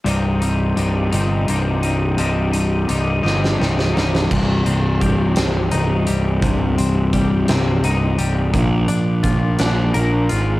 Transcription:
<<
  \new Staff \with { instrumentName = "Clean electric guitar" } { \clef bass \time 6/8 \key c \minor \tempo 4. = 57 <c, g, c g ees'>8 <c g ees'>8 <g, c g ees'>8 <c g ees'>8 <g, c g ees'>8 <c g ees'>8 | <c, g, c g ees'>8 <c g ees'>8 <g, c g ees'>8 <c g ees'>8 <g, c g ees'>8 <c g ees'>8 | c,8 c8 g8 c8 ees'8 g8 | c,8 c8 g8 c8 ees'8 g8 |
bes,8 d'8 f'8 d'8 bes'8 f'8 | }
  \new Staff \with { instrumentName = "Picked electric bass" } { \clef bass \time 6/8 \key c \minor c,,4 c,,8 g,,8 c,,4 | c,,4 c,,8 g,,8 c,,4 | c,,8 c,,8 c,,8 c,,8 c,,8 c,,8 | c,,8 c,,8 c,,8 c,,8 c,,8 c,,8 |
bes,,8 bes,,8 bes,,8 bes,,8 bes,,8 aes,,8 | }
  \new DrumStaff \with { instrumentName = "Drums" } \drummode { \time 6/8 hh8 hh8 hh8 hh8 hh8 hh8 | hh8 hh8 hh8 sn16 sn16 sn16 sn16 sn16 sn16 | <cymc bd>8 hh8 <hh bd>8 <hh sn>8 hh8 hh8 | <hh bd>8 hh8 <hh bd>8 <hh sn>8 hh8 hh8 |
<hh bd>8 hh8 <hh bd>8 <hh sn>8 hh8 hh8 | }
>>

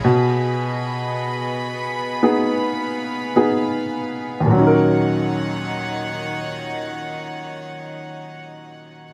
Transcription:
<<
  \new Staff \with { instrumentName = "String section" } { \time 4/4 \key ees \minor \tempo 4 = 52 << { <ces' aes' ces'' ces'''>1 | <ees ees' des'' ges''>1 | } \\ { ees''2 f''2 | r1 | } >> }
  \new Staff \with { instrumentName = "Upright piano" } { \time 4/4 \key ees \minor ces2 <ces' ees' aes'>4 <ces' ees' aes'>4 | <ees, bes, ges des' ees' bes'>1 | }
>>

